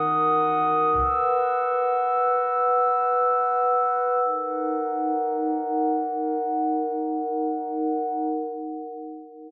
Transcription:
Already playing: D#3 D#4 F#4 A#4 F#5 D#6
0.94 B4 E6
4.23 D#4 A#4 F#5

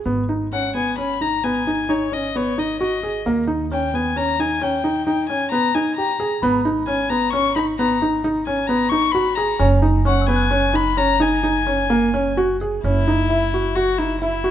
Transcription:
0.06 G#1 B3
0.29 D#4
0.53 C#4 F#5
0.75 B3 G#5
0.98 C#4 B5
1.21 D#4 A#5
1.44 B3 G#5
1.67 D#4
1.89 D#4 C#5
2.12 C#4 D#5
2.36 B3 C#5
2.58 D#4 D#5
2.81 F#4 D#5
3.03 G#4
3.26 D#2 A#3
3.47 D#4
3.71 C#4 G5
3.94 B3 G#5
4.16 C#4 A#5
4.39 D#4 G#5
4.61 C#4 G5
4.84 D#4
5.07 D#4 G5
5.29 C#4 G#5
5.52 B3 A#5
5.75 D#4 G#5
5.97 G4 A#5
6.20 G#4
6.42 G#1 B3 B5
6.65 D#4
6.87 C#4 G#5
7.10 B3 A#5
7.33 C#4 C#6
7.56 D#4 B5
7.78 B3 A#5
8.02 D#4
8.24 D#4
8.46 C#4 G#5
8.67 B3 A#5
8.89 D#4 C#6
9.12 F#4 B5
9.36 G#4 A#5
9.59 F#1 C#4 G#5
9.82 D#4
10.05 C#4 F#5 C#6
10.22 E6
10.28 B3 G#5
10.36 F#6
10.51 C#4
10.74 D#4 B5
10.97 C#4 A#5
11.20 D#4 G#5
11.43 D#4
11.67 C#4
11.90 A#3
12.14 C#4
12.37 F#4
12.61 G#4
12.84 F#1 C#4 E4
13.08 D#4
13.29 E4 E5
13.54 F#4
13.76 F#4
13.98 D#4 E4
14.22 E4
14.44 F#4

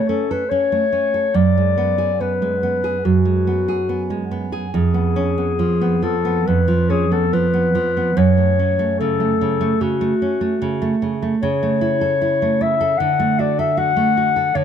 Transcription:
Already playing: A3
0.09 C#4 A4
0.31 A4 B4
0.49 C#4 C#5
0.72 A3
0.92 C#4
1.14 A4
1.34 F#2 D5
1.57 G#3
1.77 B3
1.98 G#4
2.20 B3 B4
2.42 G#3
2.63 B3
2.84 G#4
3.05 F#2 F#4
3.25 G#3
3.47 B3
3.68 G#4
3.89 B3
4.10 G#3
4.31 B3
4.52 G#4
4.74 F2 G#4
4.94 B3
5.16 C#4
5.38 B3
5.59 F3
5.81 B3
6.02 F3 A4
6.25 B3
6.47 F2 B4
6.68 F3
6.90 C#4 G#4
7.12 B3 A4
7.33 F3 B4
7.54 B3
7.75 F3
7.97 B3
8.17 F#2 C#5
8.37 A3
8.59 C#4
8.79 A3
8.99 C#3 A4
9.20 A3
9.41 C#3
9.61 A3
9.81 C#3 F#4
10.01 A3
10.22 C#4
10.41 A3
10.62 C#3
10.82 A3
11.02 C#3
11.22 A3
11.42 C#3 C#5
11.63 A3
11.81 E4
12.01 A4
12.22 E4
12.42 A3
12.61 E4 E5
12.81 A4
12.98 D3 F#5
13.19 A3
13.39 F#4 D5
13.59 A4 E5
13.77 F#4 F#5
13.96 A3
14.17 F#4
14.36 A4
14.55 D3 C#5

